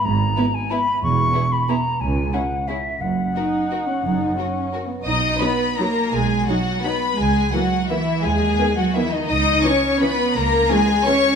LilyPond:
<<
  \new Staff \with { instrumentName = "Flute" } { \time 3/4 \key b \major \tempo 4 = 174 ais''4. gis''8 b''4 | cis'''4. b''8 ais''4 | gis''4 fis''4 e''4 | fis''2.~ |
fis''2~ fis''8 r8 | r2. | r2. | r2. |
r2. | r2. | r2. | }
  \new Staff \with { instrumentName = "Violin section" } { \time 3/4 \key b \major r4 b'4 b'4 | r4 gis'4 gis'4 | r4 gis'4 gis'4 | r4 ais'4 ais'4 |
r4 ais'4 ais'4 | dis'''4 b''4 ais''4 | gis''4 fis''4 b''4 | gis''4 fis''4 e''4 |
gis''4. fis''8 e''8 dis''8 | dis'''4 cis'''4 b''4 | ais''4 gis''4 cis'''4 | }
  \new Staff \with { instrumentName = "Violin section" } { \time 3/4 \key b \major r4 e'4 e'4 | r4 e'4 e'4 | r4 e'4 e'4 | r4 fis'4 fis'4 |
r4 fis'4 fis'4 | dis''4 b'4 ais'4 | gis'4 fis'4 b'4 | gis'4 fis'4 e'4 |
gis'4. fis'8 e'8 dis'8 | dis''4 cis''4 b'4 | ais'4 gis'4 cis''4 | }
  \new Staff \with { instrumentName = "Viola section" } { \time 3/4 \key b \major r4 b4 b4 | r4 b4 b4 | r4 cis'4 cis'4 | r4 dis'4. cis'8 |
dis'4 cis'4. b8 | r4 <fis dis'>4 <fis dis'>4 | r4 <fis dis'>4 <fis dis'>4 | r4 <e ais>4 <e ais>4 |
r4 <dis b>4 <dis b>4 | r4 <e cis'>4 <e cis'>4 | r4 <e cis'>4 <e cis'>4 | }
  \new Staff \with { instrumentName = "Cello section" } { \clef bass \time 3/4 \key b \major gis,4 r2 | e,4 r2 | cis,4 r2 | fis,4 r2 |
fis,4 r2 | dis'4 b4 ais4 | gis4 fis4 b4 | gis4 fis4 e4 |
gis4. fis8 e8 dis8 | dis'4 cis'4 b4 | ais4 gis4 cis'4 | }
  \new Staff \with { instrumentName = "Double bass section" } { \clef bass \time 3/4 \key b \major gis,,4 r2 | e,,4 r2 | cis,4 r2 | fis,,4 r2 |
fis,,4 r2 | b,,4 r2 | b,,4 r2 | cis,4 r2 |
dis,4 r2 | cis,4 r2 | cis,4 r2 | }
>>